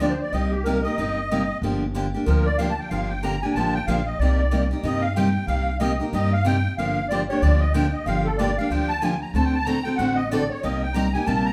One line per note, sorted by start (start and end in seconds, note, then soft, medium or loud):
0.00 0.20 D2 medium
0.00 0.12 D3 medium
0.00 0.12 F3 medium
0.00 0.12 A#3 medium
0.00 0.12 D4 medium
0.00 0.13 G4 medium
0.00 0.12 D5 medium
0.10 0.21 C5 medium
0.21 0.32 D5 medium
0.32 0.84 C2 medium
0.32 0.53 C3 medium
0.32 0.53 G3 medium
0.32 0.54 A#3 medium
0.32 0.54 D#4 medium
0.32 0.54 G4 medium
0.32 0.51 D#5 medium
0.51 0.64 G4 medium
0.64 0.77 C3 medium
0.64 0.77 G3 medium
0.64 0.77 A#3 medium
0.64 0.77 D#4 medium
0.64 0.77 G4 medium
0.64 0.84 A#4 medium
0.82 0.98 D#4 soft
0.82 0.97 G4 medium
0.82 1.57 D#5 loud
0.88 0.98 A#3 soft
0.98 1.50 G1 medium
0.98 1.18 C3 medium
0.98 1.18 G3 medium
0.98 1.19 A#3 medium
0.98 1.19 D#4 medium
0.98 1.19 G4 medium
1.31 1.42 C3 medium
1.31 1.42 G3 medium
1.31 1.42 A#3 medium
1.31 1.42 D#4 medium
1.31 1.42 G4 medium
1.62 2.14 G1 medium
1.62 1.83 D3 medium
1.62 1.83 F3 medium
1.62 1.83 A#3 medium
1.62 1.84 D4 medium
1.62 1.84 G4 medium
1.95 2.05 D3 medium
1.95 2.06 F3 medium
1.95 2.06 A#3 medium
1.95 2.06 D4 medium
1.95 2.06 G4 medium
2.14 2.26 A#3 soft
2.14 2.26 D4 medium
2.14 2.26 G4 medium
2.26 2.78 D2 medium
2.26 2.47 D3 medium
2.26 2.47 F3 medium
2.26 2.47 A#3 medium
2.26 2.47 D4 medium
2.26 2.48 G4 medium
2.26 2.46 A#4 medium
2.46 2.58 D5 loud
2.58 2.70 D3 medium
2.58 2.70 F3 medium
2.58 2.70 A#3 medium
2.58 2.70 D4 medium
2.58 2.71 G4 loud
2.58 2.69 F5 medium
2.70 2.80 A5 medium
2.80 2.90 G5 medium
2.90 3.43 G1 medium
2.90 3.11 D3 medium
2.90 3.11 F3 medium
2.90 3.12 A#3 medium
2.90 3.12 D4 medium
2.90 3.12 G4 medium
2.90 3.09 F5 medium
3.09 3.22 G5 medium
3.23 3.34 D3 medium
3.23 3.34 F3 medium
3.23 3.34 A#3 medium
3.23 3.35 D4 medium
3.23 3.35 G4 medium
3.23 3.42 A#5 loud
3.42 3.56 A#3 soft
3.42 3.56 D4 medium
3.42 3.55 G4 medium
3.42 3.55 G#5 medium
3.55 3.82 A1 medium
3.55 3.76 D3 medium
3.55 3.77 F3 medium
3.55 3.76 A#3 medium
3.55 3.77 D4 medium
3.55 3.77 G4 medium
3.55 3.74 A5 medium
3.74 3.87 G5 loud
3.87 4.15 A#1 medium
3.87 3.99 D3 medium
3.87 3.99 F3 medium
3.87 3.99 A#3 medium
3.87 4.00 D4 medium
3.87 4.00 G4 medium
3.87 4.06 F5 medium
4.06 4.19 D#5 medium
4.19 4.71 C2 medium
4.19 4.41 C3 medium
4.19 4.41 G3 medium
4.19 4.41 A#3 medium
4.19 4.41 D#4 medium
4.19 4.42 G4 medium
4.19 4.68 D5 medium
4.51 4.63 C3 medium
4.51 4.63 G3 medium
4.51 4.63 A#3 medium
4.51 4.63 D#4 medium
4.51 4.63 G4 medium
4.71 4.84 A#3 soft
4.71 4.84 D#4 medium
4.71 4.83 G4 medium
4.83 5.35 G2 medium
4.83 5.04 C3 medium
4.83 5.05 G3 medium
4.83 5.05 A#3 medium
4.83 5.05 D#4 medium
4.83 5.05 G4 medium
4.83 5.03 D#5 medium
5.01 5.15 F5 loud
5.16 5.27 C3 medium
5.16 5.28 G3 medium
5.16 5.28 A#3 medium
5.16 5.28 D#4 medium
5.16 5.28 G4 loud
5.16 5.46 G5 medium
5.47 5.99 C2 medium
5.47 5.69 C3 medium
5.47 5.69 G3 medium
5.47 5.69 A#3 medium
5.47 5.69 D#4 medium
5.47 5.69 G4 medium
5.47 5.78 F5 medium
5.80 5.91 C3 medium
5.80 5.92 G3 medium
5.80 5.92 A#3 medium
5.80 5.92 D#4 medium
5.80 5.92 G4 medium
5.80 5.99 D#5 medium
6.00 6.13 A#3 soft
6.00 6.13 D#4 medium
6.00 6.12 G4 medium
6.13 6.64 G2 medium
6.13 6.33 C3 medium
6.13 6.34 G3 medium
6.13 6.34 A#3 medium
6.13 6.34 D#4 medium
6.13 6.34 G4 medium
6.13 6.32 D#5 medium
6.33 6.45 F5 medium
6.45 6.56 C3 medium
6.45 6.56 G3 medium
6.45 6.57 A#3 medium
6.45 6.57 D#4 medium
6.45 6.57 G4 medium
6.45 6.75 G5 loud
6.78 7.29 G1 medium
6.78 6.98 D3 medium
6.78 6.98 F3 medium
6.78 6.99 A#3 medium
6.78 6.99 D4 medium
6.78 6.99 G4 medium
6.78 7.08 F5 medium
7.09 7.21 D3 medium
7.09 7.21 F3 medium
7.09 7.22 A#3 medium
7.09 7.22 D4 medium
7.09 7.22 G4 medium
7.09 7.21 D5 medium
7.29 7.42 A#3 soft
7.29 7.42 D4 medium
7.29 7.42 G4 medium
7.29 7.42 C#5 medium
7.41 7.93 D2 medium
7.41 7.62 D3 medium
7.41 7.63 F3 medium
7.41 7.63 A#3 medium
7.41 7.63 D4 medium
7.41 7.63 G4 medium
7.41 7.60 D5 medium
7.60 7.73 D#5 medium
7.74 7.85 D3 medium
7.74 7.85 F3 loud
7.74 7.85 A#3 medium
7.74 7.85 D4 medium
7.74 7.86 G4 loud
7.74 7.93 G5 medium
7.93 8.05 D#5 medium
8.06 8.57 G1 medium
8.06 8.26 D3 medium
8.06 8.27 F3 medium
8.06 8.27 A#3 medium
8.06 8.27 D4 medium
8.06 8.27 G4 medium
8.06 8.25 F5 loud
8.25 8.37 A4 medium
8.38 8.49 D3 medium
8.38 8.50 F3 medium
8.38 8.50 A#3 medium
8.38 8.50 D4 medium
8.38 8.50 G4 medium
8.38 8.57 D5 medium
8.57 8.70 A#3 soft
8.57 8.71 D4 medium
8.57 8.70 G4 medium
8.57 8.70 F5 medium
8.70 9.22 D2 medium
8.70 8.91 D3 medium
8.70 8.91 F3 medium
8.70 8.91 A#3 medium
8.70 8.91 D4 medium
8.70 8.91 G4 medium
8.70 8.89 G5 medium
8.89 9.02 A5 loud
9.01 9.13 D3 medium
9.01 9.13 F3 medium
9.01 9.14 A#3 medium
9.01 9.14 D4 medium
9.01 9.14 G4 medium
9.01 9.20 G#5 medium
9.21 9.34 A#5 medium
9.34 9.85 D2 medium
9.34 9.55 D3 medium
9.34 9.55 A3 medium
9.34 9.55 C4 medium
9.34 9.55 F#4 medium
9.34 9.56 A4 medium
9.34 9.45 A5 medium
9.45 9.55 G5 medium
9.54 9.66 A5 medium
9.65 9.77 D3 medium
9.65 9.78 A3 medium
9.65 9.78 C4 medium
9.65 9.78 F#4 medium
9.65 9.78 A4 medium
9.65 9.84 A#5 loud
9.83 9.98 F#4 medium
9.83 9.98 A4 medium
9.83 9.97 G5 medium
9.87 9.98 C4 soft
9.97 10.50 A1 medium
9.97 10.19 D3 medium
9.97 10.19 A3 medium
9.97 10.19 C4 medium
9.97 10.20 F#4 medium
9.97 10.20 A4 medium
9.97 10.16 F#5 medium
10.16 10.29 D#5 medium
10.31 10.42 D3 medium
10.31 10.42 A3 medium
10.31 10.42 C4 medium
10.31 10.43 F#4 medium
10.31 10.43 A4 loud
10.31 10.50 D5 medium
10.50 10.62 C#5 medium
10.63 11.15 C2 medium
10.63 10.83 C3 medium
10.63 10.84 G3 medium
10.63 10.84 A#3 medium
10.63 10.84 D#4 medium
10.63 10.84 G4 medium
10.63 10.82 D#5 medium
10.83 10.95 G5 medium
10.94 11.06 C3 medium
10.94 11.06 G3 medium
10.94 11.06 A#3 medium
10.94 11.06 D#4 medium
10.94 11.06 G4 medium
10.94 11.13 A#5 loud
11.13 11.26 A#3 soft
11.13 11.27 D#4 medium
11.13 11.27 G4 medium
11.13 11.26 G#5 medium
11.26 11.53 A#1 medium
11.26 11.47 C3 medium
11.26 11.48 G3 medium
11.26 11.48 A#3 medium
11.26 11.48 D#4 medium
11.26 11.48 G4 medium
11.26 11.46 A5 medium
11.45 11.53 A#5 loud